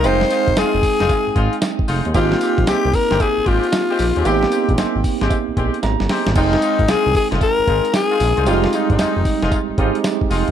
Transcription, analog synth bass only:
X:1
M:4/4
L:1/16
Q:"Swing 16ths" 1/4=114
K:Fm
V:1 name="Analog synth bass" clef=bass
F,,,2 z A,,, F,,, F,,, z F,,, z A,,, A,,, z3 F,,, E,, | A,,,2 z B,,, C,, C,, z G,,, z A,,, A,,, z3 B,,, E,, | A,,,2 z B,,, A,,, A,,, z A,,, z B,,, B,,, z A,,, G,,, z A,,, | F,,,2 z A,,, C,, C,, z F,,, z A,,, A,,, z3 B,,, C,, |
F,,,2 z A,,, F,,, F,,, z F,,, z A,,, A,,, z3 F,,, E,, |]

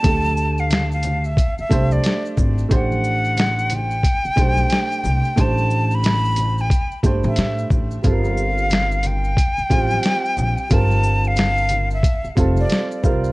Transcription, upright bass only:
X:1
M:4/4
L:1/16
Q:"Swing 16ths" 1/4=90
K:Gdor
V:1 name="Upright bass" clef=bass
D,,8 z2 C,,2 z2 ^G,,,2 | A,,,8 z2 =B,,,2 z2 C,, z | A,,,8 z2 G,,, A,,, A,,2 A,,,2 | G,,,8 z2 A,,,2 z2 B,,, z |
G,,,8 z2 F,,,2 z2 C,,2 |]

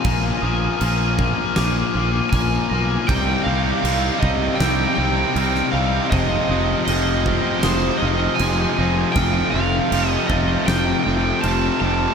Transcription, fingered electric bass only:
X:1
M:4/4
L:1/8
Q:1/4=79
K:Fdor
V:1 name="Fingered electric bass" clef=bass
B,,, B,,, B,,,2 B,,, B,,, B,,, =B,,, | C,, C,, C,, C,, C,, C,, C,, C,, | F,,, F,,, F,,,2 F,,, F,,, F,,, F,,, | F,,, F,,, F,,, F,,, F,,, F,,, F,,, F,,, |]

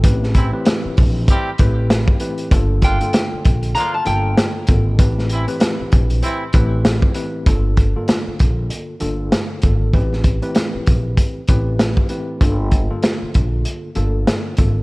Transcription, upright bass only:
X:1
M:4/4
L:1/16
Q:"Swing 16ths" 1/4=97
K:Gdor
V:1 name="Upright bass" clef=bass
A,,,3 z3 B,,,2 z2 A,,,3 z3 | G,,,3 z3 B,,,2 z2 G,,,2 z2 _A,,,2 | A,,,3 z3 B,,,2 z2 A,,,3 z3 | G,,,3 z3 B,,,2 z2 G,,,2 z2 _A,,,2 |
A,,,3 z3 B,,,2 z2 A,,,3 z3 | G,,,3 z3 B,,,2 z2 G,,,2 z2 _A,,,2 |]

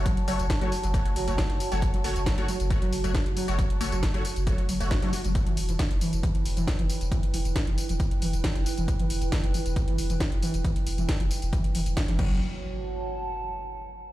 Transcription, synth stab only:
X:1
M:4/4
L:1/16
Q:1/4=136
K:F#phr
V:1 name="Synth stab"
z2 [A,Fc] z2 [A,Fc] z2 [A,Fc] z2 [A,Fc] z3 [A,Fc] | z2 [A,Fc] z2 [A,Fc] z2 [A,Fc] z2 [A,Fc] z3 [A,Fc] | z2 [A,Fc] z2 [A,Fc] z2 [A,Fc] z2 [A,Fc] z [A,Fc] z2 | z16 |
z16 | z16 | z16 | z16 |]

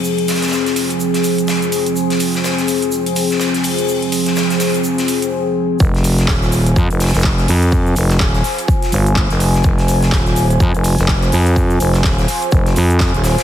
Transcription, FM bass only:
X:1
M:4/4
L:1/16
Q:"Swing 16ths" 1/4=125
K:Fm
V:1 name="FM bass" clef=bass
z16 | z16 | z16 | F,,,4 E,,,4 F,, F,,,2 F,,,3 F,,2- |
F,,2 F,,,2 E,,,2 z4 G,,,3 F,,,3 | F,,,4 E,,,4 F,, F,,,2 F,,,3 F,,2- | F,,2 F,,,2 E,,,2 z2 F,,,2 F,,3 E,,,2 z |]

